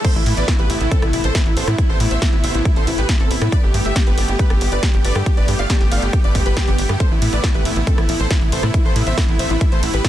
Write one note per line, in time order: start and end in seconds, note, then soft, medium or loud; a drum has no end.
0.05 0.14 A4 medium
0.05 0.14 C5 loud
0.05 kick loud
0.05 closed hi-hat medium
0.05 crash loud
0.15 0.23 A1 medium
0.15 0.25 E4 medium
0.26 0.34 A2 loud
0.26 0.36 E4 medium
0.26 open hi-hat loud
0.37 0.44 A1 medium
0.37 0.47 B4 medium
0.37 0.46 D5 medium
0.37 0.47 D5 medium
0.37 closed hi-hat medium
0.48 0.57 E4 medium
0.48 kick loud
0.48 snare loud
0.48 closed hi-hat medium
0.59 0.66 A1 medium
0.59 0.68 G4 medium
0.59 0.68 B4 loud
0.59 0.68 B4 medium
0.59 closed hi-hat soft
0.70 0.77 A1 loud
0.70 0.79 E4 medium
0.70 open hi-hat loud
0.81 0.88 A1 medium
0.81 0.90 E4 medium
0.81 closed hi-hat medium
0.92 1.01 C4 medium
0.92 1.01 A4 medium
0.92 1.01 A4 loud
0.92 kick loud
0.92 closed hi-hat medium
1.02 1.10 A1 medium
1.02 1.12 E4 medium
1.02 cross-stick medium
1.02 closed hi-hat soft
1.13 1.20 A1 loud
1.13 1.23 E4 medium
1.13 open hi-hat loud
1.24 1.31 A1 medium
1.24 1.33 A4 medium
1.24 1.33 C5 loud
1.24 closed hi-hat medium
1.35 1.44 E4 medium
1.35 kick loud
1.35 snare loud
1.35 closed hi-hat medium
1.46 1.53 A1 medium
1.46 1.55 E4 medium
1.46 closed hi-hat soft
1.57 1.64 A1 loud
1.57 1.66 A4 medium
1.57 1.66 C5 medium
1.57 1.66 C5 loud
1.57 open hi-hat loud
1.68 1.75 A2 medium
1.68 1.77 E4 medium
1.68 cross-stick medium
1.68 closed hi-hat medium
1.78 1.88 E4 medium
1.78 kick loud
1.78 closed hi-hat medium
1.89 1.97 A1 medium
1.89 1.99 A4 medium
1.89 1.99 C5 medium
2.00 2.07 A2 loud
2.00 2.09 E4 medium
2.00 2.10 E4 medium
2.00 open hi-hat loud
2.11 2.18 A1 medium
2.11 2.20 C5 medium
2.11 2.20 E5 medium
2.11 2.20 E5 loud
2.11 closed hi-hat medium
2.22 2.31 E4 medium
2.22 kick loud
2.22 cross-stick medium
2.22 snare loud
2.22 closed hi-hat medium
2.33 2.40 A1 medium
2.33 2.42 E4 medium
2.33 closed hi-hat soft
2.44 2.51 A1 loud
2.44 2.53 C5 medium
2.44 2.53 E5 loud
2.44 open hi-hat loud
2.54 2.62 A1 medium
2.54 2.64 E4 medium
2.54 closed hi-hat medium
2.65 2.75 E4 medium
2.65 kick loud
2.65 closed hi-hat medium
2.76 2.84 A1 medium
2.76 2.86 A4 medium
2.76 2.86 C5 medium
2.76 closed hi-hat soft
2.87 2.94 A1 loud
2.87 2.96 E4 medium
2.87 open hi-hat loud
2.98 3.05 A1 medium
2.98 3.07 G4 medium
2.98 3.07 B4 medium
2.98 closed hi-hat medium
3.09 3.18 E4 medium
3.09 kick loud
3.09 snare loud
3.09 closed hi-hat medium
3.20 3.27 A1 medium
3.20 3.29 C4 medium
3.20 3.29 A4 medium
3.20 closed hi-hat soft
3.31 3.38 A1 loud
3.31 3.40 E4 medium
3.31 open hi-hat loud
3.42 3.49 A2 medium
3.42 3.51 E4 medium
3.42 cross-stick medium
3.42 closed hi-hat medium
3.52 3.62 B4 medium
3.52 3.62 D5 loud
3.52 kick loud
3.52 closed hi-hat medium
3.63 3.70 G1 medium
3.63 3.73 G4 medium
3.74 3.81 G2 loud
3.74 3.83 G4 medium
3.74 open hi-hat loud
3.85 3.92 G1 medium
3.85 3.94 G4 medium
3.85 3.94 E5 medium
3.85 closed hi-hat medium
3.96 4.05 G4 medium
3.96 kick loud
3.96 snare loud
3.96 closed hi-hat medium
4.07 4.14 G1 medium
4.07 4.16 G4 medium
4.07 4.16 B4 loud
4.07 closed hi-hat soft
4.18 4.25 G1 loud
4.18 4.27 G4 medium
4.18 open hi-hat loud
4.29 4.36 G1 medium
4.29 4.38 G4 medium
4.29 closed hi-hat soft
4.39 4.49 G4 medium
4.39 4.49 B4 medium
4.39 kick loud
4.39 closed hi-hat medium
4.50 4.57 G1 medium
4.50 4.59 G4 medium
4.50 4.60 G4 medium
4.50 cross-stick medium
4.50 closed hi-hat soft
4.61 4.68 G1 loud
4.61 4.70 G4 medium
4.61 open hi-hat loud
4.72 4.79 G1 medium
4.72 4.81 B4 medium
4.72 4.81 D5 loud
4.72 4.81 D5 medium
4.72 closed hi-hat medium
4.83 4.92 G4 medium
4.83 kick loud
4.83 snare loud
4.83 closed hi-hat medium
4.94 5.01 G1 medium
4.94 5.03 G4 medium
4.94 closed hi-hat soft
5.05 5.12 G1 loud
5.05 5.14 B4 medium
5.05 5.14 D5 medium
5.05 5.14 D5 loud
5.05 open hi-hat loud
5.15 5.23 G2 medium
5.15 5.25 G4 medium
5.15 cross-stick medium
5.15 closed hi-hat medium
5.26 5.36 G4 medium
5.26 kick loud
5.26 closed hi-hat medium
5.37 5.44 G1 medium
5.37 5.46 B4 medium
5.37 5.46 D5 medium
5.37 5.47 D5 medium
5.37 closed hi-hat soft
5.48 5.55 G2 medium
5.48 5.57 G4 medium
5.48 open hi-hat loud
5.59 5.66 G1 medium
5.59 5.68 D5 medium
5.59 5.68 F5 loud
5.59 5.68 F5 medium
5.59 closed hi-hat medium
5.70 5.79 G4 medium
5.70 kick loud
5.70 cross-stick medium
5.70 snare loud
5.70 closed hi-hat medium
5.81 5.88 G1 medium
5.81 5.90 G4 medium
5.81 snare soft
5.81 closed hi-hat soft
5.91 5.99 G1 loud
5.91 6.01 D5 medium
5.91 6.01 F5 loud
5.91 6.01 F5 medium
5.91 open hi-hat loud
6.02 6.10 G1 medium
6.02 6.12 G4 medium
6.02 closed hi-hat soft
6.13 6.22 G4 medium
6.13 6.23 G4 medium
6.13 kick loud
6.13 closed hi-hat medium
6.24 6.31 G1 medium
6.24 6.33 B4 medium
6.24 6.33 D5 medium
6.24 closed hi-hat soft
6.35 6.42 G1 loud
6.35 6.44 G4 medium
6.35 kick medium
6.35 open hi-hat loud
6.46 6.53 G1 medium
6.46 6.55 G4 medium
6.46 6.55 B4 medium
6.46 closed hi-hat medium
6.57 6.66 G4 medium
6.57 kick loud
6.57 snare loud
6.57 closed hi-hat medium
6.68 6.75 G1 medium
6.68 6.77 B3 medium
6.68 6.77 G4 medium
6.68 6.77 G4 loud
6.68 closed hi-hat soft
6.78 6.86 G1 loud
6.78 6.88 G4 medium
6.78 open hi-hat loud
6.89 6.97 G2 loud
6.89 6.99 G4 medium
6.89 cross-stick medium
6.89 closed hi-hat soft
7.00 7.09 A4 medium
7.00 7.09 C5 loud
7.00 7.10 C5 loud
7.00 kick loud
7.00 closed hi-hat medium
7.11 7.18 A1 medium
7.11 7.20 E4 medium
7.22 7.29 A2 loud
7.22 7.31 E4 medium
7.22 open hi-hat loud
7.22 ride medium
7.33 7.40 A1 medium
7.33 7.42 B4 medium
7.33 7.42 D5 medium
7.33 closed hi-hat soft
7.44 7.53 E4 medium
7.44 kick loud
7.44 snare loud
7.44 closed hi-hat medium
7.55 7.62 A1 medium
7.55 7.64 G4 medium
7.55 7.64 B4 loud
7.55 7.64 B4 medium
7.55 closed hi-hat soft
7.65 7.73 A1 loud
7.65 7.75 E4 medium
7.65 open hi-hat loud
7.65 ride medium
7.76 7.84 A1 medium
7.76 7.86 E4 medium
7.76 closed hi-hat soft
7.87 7.96 C4 medium
7.87 7.96 A4 medium
7.87 7.97 A4 loud
7.87 kick loud
7.87 closed hi-hat medium
7.98 8.05 A1 medium
7.98 8.07 E4 medium
7.98 cross-stick medium
7.98 closed hi-hat soft
8.09 8.16 A1 loud
8.09 8.18 E4 medium
8.09 open hi-hat loud
8.09 ride medium
8.20 8.27 A1 medium
8.20 8.29 A4 medium
8.20 8.29 C5 loud
8.20 closed hi-hat medium
8.31 8.40 E4 medium
8.31 kick loud
8.31 snare loud
8.31 closed hi-hat medium
8.41 8.49 A1 medium
8.41 8.51 E4 medium
8.41 closed hi-hat soft
8.52 8.60 A1 loud
8.52 8.62 A4 medium
8.52 8.62 C5 loud
8.52 8.62 C5 medium
8.52 open hi-hat loud
8.52 ride medium
8.63 8.71 A2 loud
8.63 8.73 E4 medium
8.63 cross-stick medium
8.74 8.83 E4 medium
8.74 kick loud
8.74 closed hi-hat medium
8.85 8.92 A1 medium
8.85 8.94 A4 medium
8.85 8.94 C5 medium
8.96 9.03 A2 loud
8.96 9.05 E4 medium
8.96 open hi-hat loud
8.96 ride medium
9.07 9.14 A1 medium
9.07 9.16 C5 medium
9.07 9.16 E5 loud
9.07 closed hi-hat medium
9.18 9.27 E4 medium
9.18 kick loud
9.18 cross-stick medium
9.18 snare loud
9.18 closed hi-hat medium
9.28 9.36 A1 medium
9.28 9.38 E4 medium
9.28 closed hi-hat soft
9.39 9.47 A1 loud
9.39 9.49 C5 medium
9.39 9.49 E5 medium
9.39 open hi-hat loud
9.39 ride medium
9.50 9.57 A1 medium
9.50 9.60 E4 medium
9.50 closed hi-hat soft
9.61 9.70 E4 medium
9.61 kick loud
9.61 closed hi-hat medium
9.72 9.79 A1 medium
9.72 9.81 A4 medium
9.72 9.81 C5 medium
9.72 closed hi-hat soft
9.83 9.90 A1 loud
9.83 9.92 E4 medium
9.83 open hi-hat loud
9.83 ride medium
9.94 10.01 A1 loud
9.94 10.03 G4 medium
9.94 10.03 B4 medium
9.94 closed hi-hat medium
10.04 10.09 E4 medium
10.04 kick loud
10.04 snare loud
10.04 closed hi-hat medium